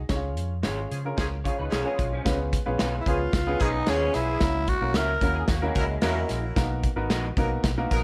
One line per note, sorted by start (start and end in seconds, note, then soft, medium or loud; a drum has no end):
0.09 0.37 C#2 loud
0.09 0.51 C#4 medium
0.09 0.16 D#4 medium
0.09 0.51 G#4 medium
0.09 0.51 C#5 medium
0.09 kick medium
0.09 snare medium
0.09 closed hi-hat medium
0.15 0.54 F4 medium
0.37 0.66 F2 medium
0.37 closed hi-hat medium
0.63 0.85 G#1 medium
0.63 0.95 C#4 medium
0.63 0.78 F4 medium
0.63 0.95 F4 medium
0.63 0.78 G#4 medium
0.63 0.95 G#4 medium
0.63 0.95 C#5 medium
0.63 0.78 C#5 medium
0.63 0.79 F5 medium
0.63 snare loud
0.63 closed hi-hat medium
0.90 1.11 C#3 medium
0.90 1.02 F3 medium
0.90 1.02 C#4 medium
0.90 1.02 G#4 medium
0.90 closed hi-hat medium
1.05 1.36 C#4 medium
1.05 1.36 F4 medium
1.05 1.36 G#4 medium
1.05 1.36 A#4 medium
1.17 1.48 C#2 medium
1.17 1.26 F3 medium
1.17 1.26 C#4 medium
1.17 1.26 G#4 loud
1.17 kick loud
1.17 snare loud
1.17 closed hi-hat medium
1.44 1.56 F3 medium
1.44 1.76 C#4 medium
1.44 1.56 C#4 medium
1.44 1.76 F4 medium
1.44 1.58 F4 medium
1.44 1.76 G#4 medium
1.44 1.56 G#4 medium
1.44 1.57 C#5 medium
1.44 1.76 C#5 medium
1.44 kick medium
1.44 closed hi-hat medium
1.58 1.69 C#2 medium
1.58 1.72 D#4 medium
1.58 1.70 B4 medium
1.70 1.82 B1 medium
1.70 2.09 F3 medium
1.70 2.10 C#4 medium
1.70 1.84 C#4 medium
1.70 1.86 F4 medium
1.70 2.10 G#4 medium
1.70 1.87 G#4 medium
1.70 1.84 A#4 medium
1.70 1.87 C#5 medium
1.70 1.87 F5 medium
1.70 snare medium
1.70 closed hi-hat medium
1.85 1.97 B3 medium
1.85 2.17 C#4 medium
1.85 2.17 F4 medium
1.85 1.98 G#4 medium
1.85 2.17 G#4 medium
1.85 2.17 C#5 medium
1.98 2.19 B1 medium
1.98 2.11 G#3 medium
1.98 2.11 F4 medium
1.98 kick medium
1.98 closed hi-hat medium
2.12 2.38 F3 medium
2.12 2.38 C#4 medium
2.25 2.56 C#2 loud
2.25 2.57 B3 medium
2.25 2.57 C#4 medium
2.25 2.57 F4 medium
2.25 2.56 G#4 medium
2.25 2.57 B4 loud
2.25 kick loud
2.25 snare loud
2.25 closed hi-hat medium
2.53 kick medium
2.53 closed hi-hat medium
2.66 2.77 A#1 medium
2.66 2.97 B3 medium
2.66 2.97 C#4 medium
2.66 2.97 F4 medium
2.66 2.98 G#4 medium
2.66 2.97 B4 loud
2.78 3.01 B1 medium
2.78 2.93 C#4 medium
2.78 2.94 G#4 medium
2.78 2.94 B4 medium
2.78 2.95 F5 medium
2.78 snare loud
2.78 closed hi-hat medium
3.01 3.10 E4 medium
3.06 3.26 C#2 medium
3.06 3.18 F3 medium
3.06 3.38 B3 medium
3.06 3.18 C#4 medium
3.06 3.38 C#4 medium
3.06 3.38 F4 medium
3.06 3.63 F4 medium
3.06 3.18 G#4 medium
3.06 3.38 G#4 medium
3.06 3.38 B4 medium
3.06 kick loud
3.06 closed hi-hat medium
3.33 3.54 C#2 medium
3.33 kick loud
3.33 snare loud
3.33 closed hi-hat medium
3.47 3.78 B3 medium
3.47 3.60 B3 medium
3.47 3.78 C#4 medium
3.47 3.78 F4 medium
3.47 3.60 G#4 medium
3.47 3.78 G#4 medium
3.47 3.78 B4 medium
3.60 3.81 B1 loud
3.60 3.69 F3 loud
3.60 3.69 C#4 loud
3.60 3.74 C#4 medium
3.60 3.91 D#4 medium
3.60 3.69 G#4 loud
3.60 3.73 A#4 medium
3.60 kick loud
3.60 closed hi-hat medium
3.73 4.38 B3 medium
3.73 4.38 G#4 medium
3.86 4.08 D#2 medium
3.86 4.39 F3 medium
3.86 4.29 B3 medium
3.86 4.01 C#4 medium
3.86 4.29 C#4 medium
3.86 4.39 C#4 medium
3.86 4.16 C#4 medium
3.86 3.94 E4 medium
3.86 4.02 G#4 medium
3.86 4.29 G#4 medium
3.86 4.39 G#4 loud
3.86 4.02 B4 medium
3.86 4.29 C#5 medium
3.86 4.02 F5 medium
3.86 snare loud
3.86 closed hi-hat medium
3.93 4.32 F4 medium
4.14 4.35 B1 loud
4.14 4.70 E4 loud
4.14 snare soft
4.14 closed hi-hat medium
4.40 4.72 C#2 loud
4.40 4.73 A#3 medium
4.40 4.73 C#4 medium
4.40 4.73 E4 medium
4.40 4.73 F#4 medium
4.40 4.73 A#4 medium
4.40 kick loud
4.40 snare loud
4.40 closed hi-hat medium
4.68 4.97 F#4 medium
4.68 kick medium
4.68 closed hi-hat medium
4.81 4.95 B1 medium
4.81 5.13 A#3 medium
4.81 5.13 C#4 medium
4.81 5.13 E4 medium
4.81 5.13 F#4 medium
4.81 5.13 A#4 medium
4.94 5.15 C#2 medium
4.94 5.09 C#4 medium
4.94 5.10 F#4 medium
4.94 5.10 A#4 medium
4.94 5.49 A#4 medium
4.94 5.10 E5 loud
4.94 snare loud
4.94 closed hi-hat medium
5.21 5.42 D#2 loud
5.21 5.34 F#3 medium
5.21 5.53 A#3 medium
5.21 5.35 C#4 medium
5.21 5.53 C#4 medium
5.21 5.53 E4 medium
5.21 5.34 E4 medium
5.21 5.53 F#4 medium
5.21 5.34 A#4 medium
5.21 5.53 A#4 medium
5.21 5.34 A#4 medium
5.21 kick loud
5.21 closed hi-hat medium
5.35 5.48 G#4 loud
5.48 5.69 D#2 loud
5.48 5.62 A#3 medium
5.48 5.61 F#4 medium
5.48 kick loud
5.48 snare loud
5.48 closed hi-hat medium
5.62 6.39 G#3 medium
5.62 5.93 A#3 medium
5.62 5.94 C#4 medium
5.62 5.94 E4 medium
5.62 6.39 E4 medium
5.62 5.94 F#4 medium
5.62 5.93 A#4 loud
5.75 5.96 C#2 loud
5.75 5.85 F#3 loud
5.75 5.85 E4 medium
5.75 5.84 A#4 loud
5.75 kick medium
5.75 closed hi-hat medium
6.02 6.23 E2 loud
6.02 6.54 F#3 medium
6.02 6.44 A#3 medium
6.02 6.44 C#4 medium
6.02 6.17 C#4 medium
6.02 6.44 E4 medium
6.02 6.54 E4 medium
6.02 6.44 F#4 medium
6.02 6.18 F#4 medium
6.02 6.44 A#4 medium
6.02 6.54 A#4 loud
6.02 6.18 A#4 medium
6.02 6.18 E5 medium
6.02 snare loud
6.02 closed hi-hat medium
6.29 6.50 A#1 medium
6.29 snare soft
6.29 closed hi-hat medium
6.56 6.87 B1 loud
6.56 6.87 A#3 medium
6.56 6.88 B3 medium
6.56 6.87 D#4 medium
6.56 6.87 F#4 medium
6.56 6.88 A#4 loud
6.56 kick loud
6.56 snare medium
6.56 closed hi-hat medium
6.83 kick medium
6.83 closed hi-hat medium
6.96 7.06 G#1 medium
6.96 7.28 B3 medium
6.96 7.28 D#4 medium
6.96 7.28 F#4 medium
6.96 7.28 A#4 medium
6.96 7.28 B4 loud
7.10 7.30 A#1 medium
7.10 7.24 B3 medium
7.10 7.25 F#4 medium
7.10 7.25 A#4 medium
7.10 7.25 D#5 medium
7.10 snare loud
7.10 closed hi-hat medium
7.37 7.57 B1 medium
7.37 7.49 F#3 medium
7.37 7.69 A#3 medium
7.37 7.68 B3 medium
7.37 7.49 D#4 medium
7.37 7.69 D#4 medium
7.37 7.69 F#4 medium
7.37 7.49 A#4 loud
7.37 7.69 A#4 loud
7.37 kick loud
7.37 closed hi-hat medium
7.63 7.84 B1 loud
7.63 kick medium
7.63 snare loud
7.63 closed hi-hat medium
7.78 8.04 A#3 loud
7.78 8.04 B3 medium
7.78 8.04 D#4 medium
7.78 8.04 F#4 medium
7.78 8.04 A#4 loud
7.91 8.04 A#1 medium
7.91 8.00 F#3 medium
7.91 8.00 D#4 medium
7.91 8.00 A#4 loud
7.91 kick medium
7.91 closed hi-hat medium